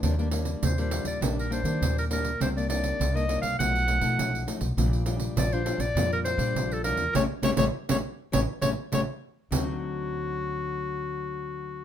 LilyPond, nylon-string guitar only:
\new Staff \with { instrumentName = "Nylon-string guitar" } { \time 4/4 \key a \phrygian \tempo 4 = 101 << { <g bes d'>16 <g bes d'>16 <g bes d'>8. <g bes d'>8. <g bes d'>8 <g bes d'>16 <g bes d'>8. <g bes d'>16 r16 | <ees bes d'>16 <ees bes d'>16 <ees bes d'>8 r16 <ees bes d'>16 <ees bes d'>8 <eis a dis'>8 <eis a dis'>16 <eis a dis'>8. <eis a dis'>16 r16 | <g d' f'>8 <g d' f'>8 r16 <g d' f'>16 <g d' f'>16 r16 <g d' f'>8. <g d' f'>8. <g d' f'>16 r16 | <g a cis'>16 r16 <g a cis'>16 <g a cis'>16 r16 <g a cis'>16 r8 <g a cis'>16 r16 <g a cis'>16 r16 <g a cis'>16 r8. |
<d fis c' ees'>1 | } \\ { ees4 bes,4 ees4 bes,4 | c4 g,4 b,4 fis,4 | bes,4 f4 bes,4 f4 | r1 |
r1 | } >> }